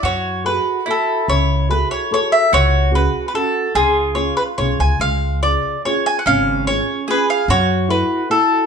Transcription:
<<
  \new Staff \with { instrumentName = "Mandolin" } { \time 3/4 \key fis \minor \tempo 4 = 145 cis''4 b'4 a'4 | cis''4 b'8 cis''8 cis''8 e''8 | cis''4 \tuplet 3/2 { b'4~ b'16 b'16 } a'4 | gis'4 cis''8 b'8 cis''8 gis''8 |
eis''4 d''4 \tuplet 3/2 { cis''8. gis''8 fis''16 } | eis''4 cis''4 b'8 eis''8 | cis''4 b'4 a'4 | }
  \new Staff \with { instrumentName = "Mandolin" } { \time 3/4 \key fis \minor fis'2 e'4~ | e'2. | fis'2. | eis'2.~ |
eis'2. | cis'2 gis'4 | fis'2. | }
  \new Staff \with { instrumentName = "Nylon-string guitar" } { \time 3/4 \key fis \minor fis4 <fis' gis' a'>4 <fis' a'>4 | cis4 <fis' gis' a'>4 <fis' gis' a'>4 | cis4 <cis' fis' gis'>4 <cis' fis'>4 | cis4 <cis' eis' gis'>4 <cis' eis' gis'>4 |
gis4 <cis eis' gis'>4 <cis' eis' gis'>4 | cis4 <cis' eis' gis'>4 <cis' eis' gis'>4 | fis4 <e' fis' a'>4 <e' fis' a'>4 | }
  \new Staff \with { instrumentName = "Upright bass" } { \clef bass \time 3/4 \key fis \minor fis,2 r4 | cis,2 r4 | cis,2 r4 | cis,2 b,,8 cis,8 |
cis,2 r4 | gis,,2 r4 | fis,2 r4 | }
>>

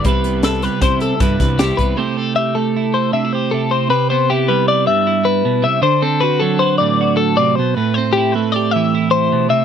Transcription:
<<
  \new Staff \with { instrumentName = "Clean electric guitar" } { \time 5/4 \key c \lydian \tempo 4 = 156 b'4 a'8 b'8 c''8 a'8 b'4 g'8 b'8 | c''8 a'8 e''8 a'4 c''8 e''8 c''8 a'8 c''8 | b'8 c''8 g'8 b'8 d''8 e''4 b'4 e''8 | c''8 a'8 b'8 a'8 c''8 d''4 a'8 d''8 c''8 |
b'8 c''8 g'8 b'8 d''8 e''4 c''4 e''8 | }
  \new Staff \with { instrumentName = "Clean electric guitar" } { \time 5/4 \key c \lydian << { <g b e' b'>8 b8 b'4 e'8 a'8 e'8 b'8 e'8 b8 | <a c' e' g'>8 c'8 g'4 e'8 a'8 d'16 e'16 g'8 e'8 c'8 | r8 b8 e'4 b'4 e'2 | r8 c'8 fis'4 b'4 fis'2 |
r8 c'8 e'4 g'4 e'2 | } \\ { c4. g4. g,4 c4 | c4. a4. c4 c4 | c4. g4 g,4. b,8 c8 | d4. fis4 a,4. c8 b,8 |
a,4. a4 e4. b,8 c8 | } >> }
  \new Staff \with { instrumentName = "Fingered electric bass" } { \clef bass \time 5/4 \key c \lydian c,2 c4 g,8 c,4 c,8 | r1 r4 | r1 r4 | r1 r4 |
r1 r4 | }
  \new DrumStaff \with { instrumentName = "Drums" } \drummode { \time 5/4 <hh bd>8 hh8 <hh sn>8 <hh sn>8 <hh bd sn>8 hh8 <hh bd sn>8 <hh bd sn>8 <hh sn>8 <hh bd>8 | r4 r4 r4 r4 r4 | r4 r4 r4 r4 r4 | r4 r4 r4 r4 r4 |
r4 r4 r4 r4 r4 | }
>>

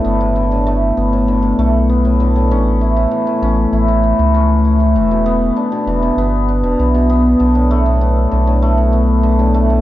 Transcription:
<<
  \new Staff \with { instrumentName = "Hammered dulcimer" } { \clef bass \time 4/4 \key b \minor \tempo 4 = 98 b16 a,16 d16 a,16 a8 b16 a,16 d16 a,16 a8 b16 a,16 d16 a,16 | cis'8 e'16 a,16 e16 a,16 cis'8 e'16 a,16 e16 a,16 cis'8 e'16 a,16 | e16 b,16 b8 d'16 b,16 e16 b,16 b8 d'16 b,16 e16 b,16 b8 | d16 a,16 a16 a,16 b8 d16 a,16 a16 a,16 b8 d16 a,16 a16 a,16 | }
  \new Staff \with { instrumentName = "Sub bass" } { \clef bass \time 4/4 \key b \minor g,,4. g,,4 b,,4. | a,,4 r8 a,,8 a,,8. cis,4~ cis,16 | e,,4 r8 e,,8 g,,8. e,,16 b,,4 | b,,4. b,,2~ b,,8 | }
>>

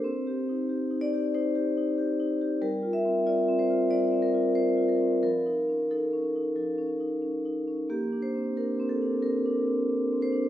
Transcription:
\new Staff \with { instrumentName = "Vibraphone" } { \time 4/4 \key bes \major \tempo 4 = 92 << { c''4. d''8 c''4. r8 | bes'8 e''8 d''8 c''8 d''8 bes'8 c''8 bes'8 | bes'4 a'2 r4 | g'8 c''8 bes'8 a'8 bes'4. c''8 | } \\ { \tuplet 3/2 { c'8 g'8 ees'8 g'8 ees'8 g'8 ees'8 g'8 ees'8 g'8 ees'8 g'8 } | \tuplet 3/2 { g8 f'8 c'8 f'8 c'8 f'8 g8 c'8 f'8 c'8 f'8 c'8 } | \tuplet 3/2 { f8 ees'8 cis'8 ees'8 cis'8 ees'8 f8 cis'8 ees'8 cis'8 ees'8 cis'8 } | \tuplet 3/2 { bes8 d'8 c'8 d'8 c'8 d'8 c'8 d'8 c'8 d'8 c'8 d'8 } | } >> }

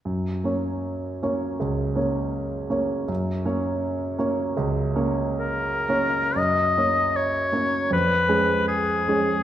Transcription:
<<
  \new Staff \with { instrumentName = "Oboe" } { \time 4/4 \key fis \major \tempo 4 = 78 r1 | r2. ais'4 | dis''4 cis''4 b'4 gis'4 | }
  \new Staff \with { instrumentName = "Grand piano" } { \time 4/4 \key fis \major fis,8 <ais cis' cis''>4 <ais cis' cis''>8 cis,8 <ais cis' cis''>4 <ais cis' cis''>8 | fis,8 <ais cis' cis''>4 <ais cis' cis''>8 cis,8 <ais cis' cis''>4 <ais cis' cis''>8 | fis,8 <ais cis' cis''>4 <ais cis' cis''>8 eis,8 <gis cis' gis'>4 <gis cis' gis'>8 | }
>>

